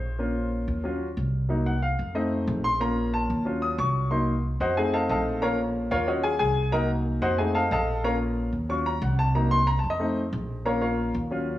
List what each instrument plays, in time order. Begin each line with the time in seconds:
Already playing: upright bass A#1, grand piano C5
0.19 grand piano A#3 C#4 F4
0.68 upright bass D#2
0.84 grand piano F#3 C#4 F4
1.17 upright bass C2
1.49 grand piano F#3 A#3 D#4
1.66 grand piano F#5
1.82 grand piano F5
1.99 upright bass F2
2.15 grand piano A3 C4 D#4 D#5
2.47 upright bass A#1
2.64 grand piano C6
2.80 grand piano A#3 C#4 F4 A#5
3.14 grand piano A5
3.30 upright bass D#2
3.45 grand piano F#3 C#4 F4
3.62 grand piano D#6
3.78 upright bass C2, grand piano C#6
4.11 grand piano F#3 A#3 D#4 C6
4.60 upright bass F2, grand piano F#4 C5 D#5 F#5
4.77 grand piano A3 C4 D#4 G#4 G#5
4.94 grand piano A4 D#5 F5 A5
5.09 upright bass A#1, grand piano A4 D#5 F5 A5
5.42 grand piano A#3 C#4 F4 A#4 C#5 F5 A#5
5.91 upright bass D#2, grand piano F4 A#4 C#5 F5
6.07 grand piano F#3 C#4 F4 F#4 C#5 D#5 F#5
6.24 grand piano G#4 G#5
6.39 upright bass C2, grand piano G#4 G#5
6.72 grand piano F#3 A#3 D#4 A#4 D#5 F#5 A#5
7.22 upright bass F2, grand piano F#4 C5 D#5 F#5
7.38 grand piano A3 C4 D#4 G#4 G#5
7.55 grand piano A4 D#5 F5 A5
7.71 upright bass A#1, grand piano A4 D#5 F5 A5
8.04 grand piano A#3 C#4 F4 A#4 C#5 F5 A#5
8.52 upright bass D#2
8.69 grand piano F#3 C#4 F4 C#6
8.86 grand piano A#5
9.02 upright bass C2, grand piano F#5
9.19 grand piano A5
9.35 grand piano F#3 A#3 D#4 A#5
9.51 grand piano C6
9.67 grand piano A#5
9.79 grand piano A5
9.84 upright bass F2
9.90 grand piano D#5
10.00 grand piano A3 C4 D#4
10.33 upright bass A#1
10.65 grand piano A#3 C#4 F4 A#4 C#5 F5 A#5
10.81 grand piano F4 A#4 C#5 F5
11.14 upright bass D#2
11.31 grand piano F#3 C#4 F4